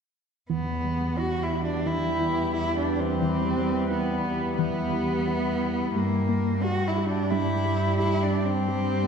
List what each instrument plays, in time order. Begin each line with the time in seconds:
0.50 cello section E2, synth pluck E3, synth drone G3 E4 G4 B4, cello B3
0.84 synth pluck G3
1.18 synth pluck E4, cello F#4
1.43 cello E4
1.53 synth pluck E4
1.65 cello D4
1.86 synth pluck E3, cello E4
2.20 synth pluck E4
2.54 cello E4, synth pluck E4
2.78 cello D4
3.00 cello C4
3.22 synth pluck E3
3.57 synth pluck G3
3.90 cello B3, synth pluck E4
4.25 synth pluck E4
4.59 synth pluck E3, cello B3
4.93 synth pluck E4
5.27 synth pluck E4
5.95 cello section G2, synth pluck G3, synth drone G3 D4 G4 D5, cello A#3
6.29 synth pluck A#3
6.63 cello F#4, synth pluck G4
6.88 cello E4
6.98 synth pluck G4
7.09 cello D4
7.31 synth pluck G3, cello E4
7.65 synth pluck G4
7.99 cello E4, synth pluck G4
8.23 cello D4
8.45 cello C4
8.69 synth pluck G3
9.03 synth pluck A#3